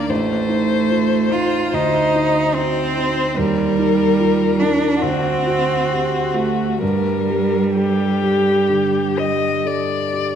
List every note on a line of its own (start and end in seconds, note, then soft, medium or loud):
0.00 0.12 D#2 medium
0.00 0.12 D4 soft
0.00 0.13 D#4 soft
0.00 0.11 D5 medium
0.09 1.69 A1 medium
0.09 1.34 A3 medium
0.09 1.72 C5 medium
0.49 1.15 D#4 soft
0.90 1.32 F4 soft
1.32 1.74 D#4 soft
1.32 1.76 F4 medium
1.73 3.33 D2 medium
1.73 2.57 D#4 medium
1.73 2.54 C5 soft
2.15 2.80 D#4 soft
2.55 3.37 C4 medium
2.55 2.97 F#4 soft
2.55 3.40 C5 medium
2.97 3.38 D#4 soft
3.37 4.98 D#2 medium
3.37 4.61 G3 medium
3.37 5.01 A#4 medium
3.79 4.44 D#4 soft
4.19 4.60 F4 soft
4.59 5.04 D4 medium
4.59 5.02 D#4 soft
5.02 6.78 D2 medium
5.02 6.36 C4 medium
5.02 6.78 F#4 medium
5.46 6.17 F#4 soft
5.90 6.35 G4 soft
6.34 6.81 A3 medium
6.34 6.82 F#4 soft
6.81 8.66 G2 medium
6.81 9.60 G3 medium
6.81 7.64 A#4 soft
7.29 8.03 G4 soft
7.75 9.20 G4 medium
7.75 8.22 A4 soft
8.22 8.98 G4 soft
8.69 9.46 D3 soft
9.17 9.92 G4 soft
9.17 9.68 D#5 medium
9.65 10.12 A4 soft
9.65 10.35 D5 medium
10.13 10.35 G4 soft